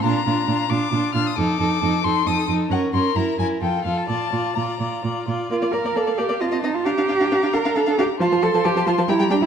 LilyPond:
<<
  \new Staff \with { instrumentName = "Violin" } { \time 3/4 \key bes \major \tempo 4 = 134 bes''4. d'''4 f'''16 ees'''16 | d'''4. c'''8 ees'''8 r8 | ges''8 c'''8 bes''8 aes''8 g''8 f''16 a''16 | a''4 bes''4. r8 |
f''2 a''4 | bes''2. | c'''2 bes''4 | }
  \new Staff \with { instrumentName = "Violin" } { \time 3/4 \key bes \major f'8 f'8 f'8 f'8 f'8 f'8 | a'8 a'8 a'8 a'8 a'8 a'8 | bes'8 bes'8 bes'8 bes'8 a'8 a'8 | d''8 d''8 d''8 d''8 d''8 d''8 |
d''16 d''16 d''16 d''16 d''16 d''16 d''16 d''16 ees''16 ees''16 ees''16 r16 | f''16 f''16 f''16 f''16 f''16 f''16 f''16 f''16 f''16 f''16 f''16 r16 | a''16 a''16 a''16 a''16 a''16 a''16 a''16 a''16 g''16 g''16 g''16 r16 | }
  \new Staff \with { instrumentName = "Viola" } { \time 3/4 \key bes \major d'8 d'8 d'8 d'8 d'8 d'8 | ees'8 ees'8 ees'8 ees'8 ees'8 ees'8 | des'8 des'8 fes'8 fes'8 f'8 f'8 | f'8 f'8 f'8 f'8 f'8 f'8 |
bes16 bes16 bes16 bes16 bes16 bes16 bes16 bes16 c'16 c'16 c'16 r16 | d'16 d'16 d'16 d'16 d'16 d'16 d'16 d'16 d'16 d'16 d'16 r16 | f16 f16 f16 f16 f16 f16 f16 f16 g16 g16 g16 r16 | }
  \new Staff \with { instrumentName = "Cello" } { \clef bass \time 3/4 \key bes \major bes,8 bes,8 bes,8 bes,8 bes,8 bes,8 | f,8 f,8 f,8 f,8 f,8 f,8 | ges,8 ges,8 ges,8 ges,8 f,8 f,8 | bes,8 bes,8 bes,8 bes,8 bes,8 bes,8 |
f'8 bes'8 a'8 g'8 f'8 ees'16 f'16 | g'4. bes'8 a'8 g'8 | f'8 a'8 g'8 f'8 e'8 d'16 e'16 | }
>>